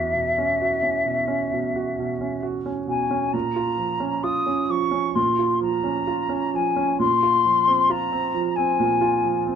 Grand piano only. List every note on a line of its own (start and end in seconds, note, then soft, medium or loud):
0.00 1.47 E2 soft
0.00 0.27 F#4 soft
0.14 0.51 B2 soft
0.38 0.74 C#4 soft
0.61 0.97 F#4 soft
0.83 1.19 C#4 soft
1.06 1.42 B2 soft
1.28 1.64 C#4 soft
1.52 1.88 B2 soft
1.76 2.12 F#4 soft
1.99 2.35 B2 soft
2.21 2.57 C#4 soft
2.43 2.79 F#4 soft
2.66 3.02 C#4 soft
2.87 3.24 B2 soft
3.10 3.33 C#4 soft
3.33 5.12 A#2 soft
3.56 3.93 F4 soft
3.77 4.15 F3 soft
4.00 4.38 C#4 soft
4.24 4.61 F4 soft
4.46 4.84 C#4 soft
4.69 5.07 F3 soft
4.91 5.15 C#4 soft
5.15 6.95 A#2 medium
5.39 5.75 F4 soft
5.60 5.98 F3 soft
5.84 6.21 C#4 soft
6.07 6.44 F4 soft
6.29 6.67 C#4 soft
6.54 6.91 F3 soft
6.76 7.00 C#4 medium
6.99 8.76 A#2 medium
7.23 7.59 F4 soft
7.45 7.81 F3 soft
7.68 8.04 C4 soft
7.90 8.26 F4 medium
8.12 8.48 C4 soft
8.34 8.71 F3 soft
8.58 8.94 C4 soft
8.80 9.55 A#2 medium
9.01 9.39 F4 medium
9.23 9.55 F3 soft
9.47 9.55 C4 soft